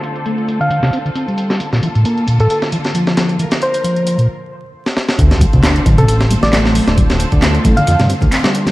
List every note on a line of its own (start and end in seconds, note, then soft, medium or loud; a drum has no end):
0.00 1.56 D3 medium
0.00 1.57 C4 medium
0.00 1.56 F4 medium
0.00 1.57 A4 medium
0.00 closed hi-hat medium
0.16 closed hi-hat soft
0.26 0.59 A3 medium
0.26 closed hi-hat soft
0.26 closed hi-hat medium
0.38 closed hi-hat soft
0.48 closed hi-hat medium
0.60 0.69 D3 medium
0.60 0.93 F5 medium
0.60 closed hi-hat soft
0.71 0.80 D3 medium
0.71 closed hi-hat medium
0.71 closed hi-hat soft
0.82 0.91 C3 medium
0.82 snare soft
0.82 closed hi-hat soft
0.93 0.99 C4 medium
0.93 closed hi-hat medium
1.05 1.10 D3 medium
1.05 closed hi-hat soft
1.15 1.26 C4 medium
1.15 closed hi-hat medium
1.15 closed hi-hat soft
1.28 1.61 G3 medium
1.28 closed hi-hat soft
1.38 closed hi-hat medium
1.50 snare soft
1.50 closed hi-hat soft
1.60 4.26 D3 medium
1.60 4.26 A#3 medium
1.60 4.26 F4 medium
1.60 3.38 A4 medium
1.60 closed hi-hat medium
1.60 closed hi-hat soft
1.73 1.80 A#2 medium
1.73 snare soft
1.73 closed hi-hat soft
1.83 1.88 E3 medium
1.83 closed hi-hat medium
1.95 2.04 A2 medium
1.95 closed hi-hat soft
2.05 2.27 A#3 medium
2.05 closed hi-hat medium
2.05 closed hi-hat soft
2.18 closed hi-hat soft
2.28 2.39 A#2 medium
2.28 closed hi-hat medium
2.40 2.47 A2 medium
2.40 2.47 A4 medium
2.40 closed hi-hat soft
2.50 2.58 A4 medium
2.50 closed hi-hat soft
2.50 closed hi-hat medium
2.62 snare soft
2.62 closed hi-hat soft
2.72 2.78 E3 medium
2.72 closed hi-hat medium
2.85 snare soft
2.85 closed hi-hat soft
2.94 3.38 F3 medium
2.94 closed hi-hat soft
2.94 closed hi-hat medium
3.07 snare soft
3.07 closed hi-hat soft
3.17 snare medium
3.17 closed hi-hat medium
3.29 closed hi-hat soft
3.39 3.45 E3 medium
3.39 4.28 A#4 medium
3.39 closed hi-hat soft
3.39 closed hi-hat medium
3.51 snare medium
3.51 closed hi-hat soft
3.51 closed hi-hat medium
3.62 4.25 C5 medium
3.62 closed hi-hat medium
3.74 closed hi-hat soft
3.74 closed hi-hat medium
3.84 4.18 F3 medium
3.84 closed hi-hat soft
3.84 closed hi-hat medium
3.96 closed hi-hat soft
4.07 closed hi-hat medium
4.18 4.28 A#2 medium
4.18 closed hi-hat soft
4.86 snare soft
4.97 snare medium
5.09 snare medium
5.19 5.46 D2 loud
5.19 8.72 D3 medium
5.19 8.72 C4 medium
5.19 8.72 F4 medium
5.19 8.72 A4 medium
5.19 kick loud
5.19 closed hi-hat medium
5.19 closed hi-hat soft
5.19 sub drop medium
5.30 5.38 D3 medium
5.30 snare soft
5.30 closed hi-hat soft
5.41 5.46 G3 medium
5.41 kick loud
5.41 closed hi-hat medium
5.53 5.80 D2 loud
5.53 5.62 C3 loud
5.53 kick loud
5.53 closed hi-hat soft
5.63 5.85 D4 loud
5.63 snare loud
5.63 clap loud
5.63 closed hi-hat medium
5.63 closed hi-hat soft
5.76 closed hi-hat soft
5.86 6.36 A1 loud
5.86 5.97 D3 medium
5.86 kick loud
5.86 closed hi-hat medium
5.86 low conga medium
5.98 6.05 C3 loud
5.98 6.05 A4 medium
5.98 closed hi-hat soft
6.08 6.16 A4 medium
6.08 closed hi-hat medium
6.08 closed hi-hat soft
6.21 snare medium
6.21 closed hi-hat soft
6.31 6.36 G3 medium
6.31 closed hi-hat medium
6.31 high conga medium
6.43 6.81 A1 medium
6.43 6.56 D5 loud
6.43 snare soft
6.43 closed hi-hat soft
6.43 high conga medium
6.52 6.96 A3 loud
6.52 snare loud
6.52 clap loud
6.52 closed hi-hat soft
6.52 closed hi-hat medium
6.65 snare medium
6.75 closed hi-hat medium
6.75 open hi-hat medium
6.75 low conga medium
6.87 7.26 D1 loud
6.87 snare medium
6.87 closed hi-hat soft
6.97 7.03 G3 medium
6.97 kick loud
6.97 closed hi-hat medium
6.97 closed hi-hat soft
7.10 snare medium
7.10 closed hi-hat soft
7.10 high conga medium
7.20 closed hi-hat medium
7.32 7.59 D2 loud
7.32 kick medium
7.32 closed hi-hat soft
7.42 7.76 A3 medium
7.42 snare loud
7.42 clap loud
7.42 closed hi-hat soft
7.42 closed hi-hat medium
7.55 closed hi-hat soft
7.65 7.80 A1 loud
7.65 kick loud
7.65 closed hi-hat medium
7.65 high conga medium
7.65 low conga medium
7.77 7.86 D3 loud
7.77 8.10 F5 medium
7.77 closed hi-hat soft
7.87 7.96 F2 medium
7.87 7.97 D3 medium
7.87 closed hi-hat soft
7.87 closed hi-hat medium
7.99 8.14 G2 medium
7.99 8.07 C3 medium
7.99 snare soft
7.99 closed hi-hat soft
7.99 high conga medium
8.09 8.15 C4 loud
8.09 closed hi-hat medium
8.21 8.29 D2 loud
8.21 8.26 D3 medium
8.21 kick loud
8.21 closed hi-hat soft
8.21 high conga medium
8.21 low conga medium
8.32 8.43 C4 medium
8.32 clap loud
8.32 closed hi-hat medium
8.32 closed hi-hat soft
8.44 8.72 G3 medium
8.44 snare loud
8.55 closed hi-hat medium
8.66 snare soft
8.66 closed hi-hat soft
8.66 low conga medium